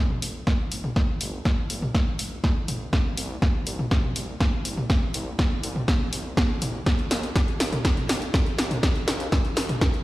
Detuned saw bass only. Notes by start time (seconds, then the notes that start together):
0.22 G1
0.72 G1
1.21 G1
1.70 G1
2.19 G1
2.68 G1
3.17 C2
3.67 C2
4.16 C2
4.65 C2
5.14 C2
5.63 C2
6.13 C2
6.62 C2
7.11 D#2
7.60 D#2
8.09 D#2
8.58 D#2
9.08 D#2
9.57 D#2